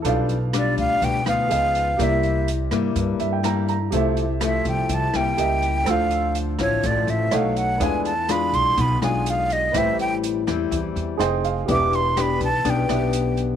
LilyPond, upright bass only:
\new Staff \with { instrumentName = "Upright bass" } { \clef bass \time 4/4 \key e \phrygian \tempo 4 = 124 b,,4. d,8 d,8 d,8 cis,4 | c,4. g,8 g,8 g,4. | c,4. c,8 c,8 c,8 cis,4 | d,4. a,,8 a,,8 a,,8 b,,4 |
e,4. b,,8 b,,8 b,,4. | a,,4. e,8 e,8 e,8 f,,4 | e,,4. b,,8 b,,8 b,,4. | }